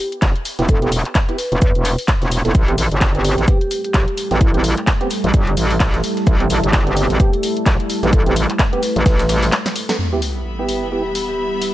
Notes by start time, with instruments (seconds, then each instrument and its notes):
0.12 closed hi-hat
0.22 wobble bass F#1, kick, snare, clap, closed hi-hat, shaker
0.36 closed hi-hat
0.45 open hi-hat, shaker
0.59 wobble bass E1, synth stab B3 E4 G4, snare, closed hi-hat
0.69 vibraphone A4, kick, closed hi-hat, shaker
0.82 synth stab B3 E4 G4, closed hi-hat
0.92 open hi-hat, shaker
1.05 clap, closed hi-hat
1.15 kick, snare, clap, closed hi-hat, shaker
1.29 synth stab B3 E4 G4, vibraphone B4, closed hi-hat
1.38 snare, open hi-hat, shaker
1.52 wobble bass E1, closed hi-hat
1.62 wobble bass E2, kick, closed hi-hat, shaker
1.75 wobble bass E1, closed hi-hat
1.85 open hi-hat, shaker
1.98 open hi-hat
2.08 kick, snare, clap, closed hi-hat, shaker
2.22 wobble bass E1, snare, closed hi-hat
2.31 open hi-hat, shaker
2.45 wobble bass E1, synth stab B3 E4 A4, snare, closed hi-hat
2.55 wobble bass A1, ambient pad G3 A3 E4 A4, kick, closed hi-hat, shaker
2.68 synth stab B3 C4 G4, closed hi-hat
2.78 wobble bass A1, snare, open hi-hat, shaker
2.91 wobble bass G1, closed hi-hat
3.01 kick, snare, clap, closed hi-hat, shaker
3.15 synth stab B3 C4 G4, closed hi-hat
3.24 open hi-hat, shaker
3.38 wobble bass A1, snare, closed hi-hat
3.48 synth stab B3 C4 G4, vibraphone G4, kick, closed hi-hat, shaker
3.61 vibraphone G4, closed hi-hat
3.71 open hi-hat, shaker
3.84 vibraphone G4, closed hi-hat
3.94 wobble bass B1, kick, snare, clap, closed hi-hat, shaker
4.08 closed hi-hat
4.17 open hi-hat, shaker
4.31 wobble bass A1, synth stab B3 C4 G4, snare, closed hi-hat
4.41 vibraphone E4, kick, closed hi-hat, shaker
4.54 synth stab B3 C4 G4, vibraphone E4, closed hi-hat
4.64 open hi-hat, shaker
4.77 clap, closed hi-hat
4.87 kick, snare, clap, closed hi-hat, shaker
5.01 synth stab B3 C4 G4, closed hi-hat
5.10 snare, open hi-hat, shaker
5.24 wobble bass A1, closed hi-hat
5.34 wobble bass G1, kick, closed hi-hat, shaker
5.47 closed hi-hat
5.57 wobble bass A1, open hi-hat, shaker
5.71 open hi-hat
5.80 kick, snare, clap, closed hi-hat, shaker
5.94 snare, closed hi-hat
6.03 open hi-hat, shaker
6.17 snare, closed hi-hat
6.27 wobble bass A1, kick, closed hi-hat, shaker
6.40 synth stab B3 C4 G4, closed hi-hat
6.50 wobble bass A1, snare, open hi-hat, shaker
6.63 wobble bass G1, closed hi-hat
6.73 kick, snare, clap, closed hi-hat, shaker
6.87 synth stab B3 C4 G4, closed hi-hat
6.97 open hi-hat, shaker
7.10 wobble bass A1, snare, closed hi-hat
7.20 synth stab B3 C4 G4, vibraphone G4, kick, closed hi-hat, shaker
7.33 vibraphone G4, closed hi-hat
7.43 open hi-hat, shaker
7.57 closed hi-hat
7.66 wobble bass B1, kick, snare, clap, closed hi-hat, shaker
7.80 closed hi-hat
7.90 open hi-hat, shaker
8.03 wobble bass A1, synth stab B3 C4 G4, snare, closed hi-hat
8.13 vibraphone A4, kick, closed hi-hat, shaker
8.26 synth stab B3 C4 G4, closed hi-hat
8.36 open hi-hat, shaker
8.50 clap, closed hi-hat
8.59 kick, snare, clap, closed hi-hat, shaker
8.73 synth stab B3 C4 G4, vibraphone B4, closed hi-hat
8.83 snare, open hi-hat, shaker
8.96 wobble bass A1, closed hi-hat
9.06 wobble bass A1, kick, snare, closed hi-hat, shaker
9.19 snare, closed hi-hat, shaker
9.29 snare, open hi-hat, shaker
9.43 snare, open hi-hat, shaker
9.52 snare, clap, closed hi-hat, shaker
9.66 snare, closed hi-hat, shaker
9.76 open hi-hat, shaker
9.89 synth stab B3 C4 A4, snare, closed hi-hat, shaker
9.99 ambient pad G3 B3 E4 B4, string section B3, sub drop
10.03 string section G3
10.12 synth stab B3 E4 G4
10.22 string section E5, open hi-hat
10.27 string section B5
10.59 synth stab B3 E4 G4
10.69 open hi-hat
10.92 synth stab B3 E4 G4, vibraphone G4
11.05 vibraphone G4
11.15 open hi-hat
11.29 vibraphone G4
11.62 open hi-hat